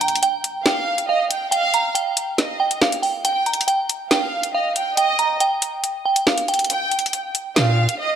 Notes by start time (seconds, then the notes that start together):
Already playing: G5
0.01 A#5, closed hi-hat
0.08 closed hi-hat
0.15 closed hi-hat
0.23 G5, closed hi-hat
0.44 closed hi-hat
0.66 F5 G5, snare, closed hi-hat
0.98 closed hi-hat
1.08 D#5 F5
1.30 G5, closed hi-hat
1.51 F5 G5, closed hi-hat
1.74 A#5, closed hi-hat
1.95 G5, closed hi-hat
2.17 closed hi-hat
2.38 D#5, snare, closed hi-hat
2.60 G5
2.71 closed hi-hat
2.82 F5, snare
2.92 closed hi-hat
3.03 G5, open hi-hat
3.25 G5, closed hi-hat
3.46 A#5, closed hi-hat
3.53 closed hi-hat
3.61 closed hi-hat
3.68 G5, closed hi-hat
3.89 closed hi-hat
4.11 F5 G5, snare, closed hi-hat
4.43 closed hi-hat
4.54 D#5 F5
4.76 G5, closed hi-hat
4.97 D#5 G5, closed hi-hat
5.19 A#5, closed hi-hat
5.40 G5, closed hi-hat
5.62 closed hi-hat
5.84 closed hi-hat
6.05 G5
6.16 closed hi-hat
6.27 F5, snare
6.38 closed hi-hat
6.48 G5, closed hi-hat
6.54 closed hi-hat
6.59 closed hi-hat
6.64 closed hi-hat
6.70 G5, closed hi-hat
6.91 closed hi-hat
6.99 closed hi-hat
7.06 closed hi-hat
7.13 closed hi-hat
7.35 closed hi-hat
7.56 A#2 F5, snare, closed hi-hat
7.89 closed hi-hat
7.99 D#5